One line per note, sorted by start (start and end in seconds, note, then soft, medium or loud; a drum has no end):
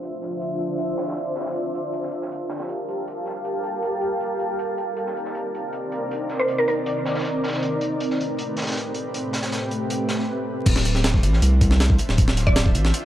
0.00 1.53 D4 medium
0.00 1.53 F4 medium
0.00 1.53 C5 medium
0.00 1.53 E5 medium
0.00 closed hi-hat medium
0.22 snare soft
0.22 closed hi-hat medium
0.41 closed hi-hat medium
0.59 closed hi-hat medium
0.79 closed hi-hat medium
0.98 snare medium
0.98 closed hi-hat medium
1.07 snare medium
1.07 closed hi-hat medium
1.12 snare medium
1.12 closed hi-hat medium
1.17 closed hi-hat medium
1.36 snare medium
1.36 closed hi-hat medium
1.40 snare medium
1.40 closed hi-hat medium
1.46 snare medium
1.46 closed hi-hat medium
1.55 4.57 G4 medium
1.55 4.57 A#4 medium
1.55 4.57 F5 medium
1.55 4.57 A5 medium
1.55 closed hi-hat medium
1.75 closed hi-hat medium
1.93 closed hi-hat medium
2.03 snare soft
2.12 closed hi-hat medium
2.22 snare soft
2.32 closed hi-hat medium
2.50 snare loud
2.50 closed hi-hat medium
2.59 snare loud
2.59 closed hi-hat medium
2.69 closed hi-hat medium
2.88 closed hi-hat medium
3.07 closed hi-hat medium
3.25 snare soft
3.25 closed hi-hat medium
3.45 closed hi-hat medium
3.64 closed hi-hat medium
3.82 closed hi-hat medium
4.01 closed hi-hat medium
4.21 closed hi-hat medium
4.39 closed hi-hat medium
4.59 7.60 C4 medium
4.59 7.60 D#4 medium
4.59 7.60 A#4 medium
4.59 7.60 D5 medium
4.59 closed hi-hat medium
4.78 closed hi-hat medium
4.97 closed hi-hat medium
5.06 snare soft
5.17 closed hi-hat medium
5.25 snare soft
5.35 closed hi-hat medium
5.55 closed hi-hat medium
5.73 closed hi-hat medium
5.92 closed hi-hat medium
6.11 closed hi-hat medium
6.29 snare soft
6.29 closed hi-hat medium
6.39 6.62 C5 medium
6.48 closed hi-hat medium
6.58 6.64 A#4 medium
6.68 6.74 A#4 medium
6.68 closed hi-hat medium
6.86 closed hi-hat medium
7.05 snare medium
7.05 closed hi-hat medium
7.15 snare medium
7.15 closed hi-hat medium
7.19 snare medium
7.19 closed hi-hat medium
7.25 closed hi-hat medium
7.44 snare medium
7.44 closed hi-hat medium
7.48 snare medium
7.48 closed hi-hat medium
7.53 snare medium
7.53 closed hi-hat medium
7.63 10.28 A3 medium
7.63 10.28 C4 medium
7.63 10.28 G4 medium
7.63 10.28 B4 medium
7.63 closed hi-hat medium
7.81 closed hi-hat medium
8.00 closed hi-hat medium
8.10 snare soft
8.21 closed hi-hat soft
8.39 closed hi-hat medium
8.57 snare medium
8.57 closed hi-hat medium
8.62 snare medium
8.62 closed hi-hat medium
8.67 snare medium
8.67 closed hi-hat medium
8.71 snare medium
8.71 closed hi-hat medium
8.77 closed hi-hat medium
8.94 closed hi-hat medium
9.14 closed hi-hat medium
9.33 snare medium
9.33 closed hi-hat medium
9.43 snare loud
9.43 closed hi-hat medium
9.52 snare loud
9.52 closed hi-hat medium
9.71 closed hi-hat medium
9.90 closed hi-hat medium
10.09 snare medium
10.09 closed hi-hat medium
10.19 snare soft
10.66 11.25 D1 loud
10.66 kick loud
10.66 closed hi-hat medium
10.66 crash medium
10.76 snare medium
10.85 closed hi-hat medium
10.95 snare soft
11.04 snare loud
11.04 closed hi-hat medium
11.14 kick loud
11.14 snare soft
11.23 11.40 A1 medium
11.23 closed hi-hat medium
11.33 snare medium
11.42 11.98 C2 loud
11.42 closed hi-hat medium
11.61 kick medium
11.61 closed hi-hat medium
11.71 snare soft
11.80 snare loud
11.80 closed hi-hat medium
11.90 kick loud
11.98 closed hi-hat medium
12.09 12.77 D1 medium
12.09 snare soft
12.18 kick loud
12.18 closed hi-hat medium
12.28 snare medium
12.37 snare soft
12.37 closed hi-hat medium
12.47 12.70 D5 medium
12.47 kick loud
12.56 snare loud
12.56 closed hi-hat medium
12.66 kick loud
12.75 12.92 A1 medium
12.75 closed hi-hat medium
12.85 snare medium
12.94 closed hi-hat loud
12.94 closed hi-hat medium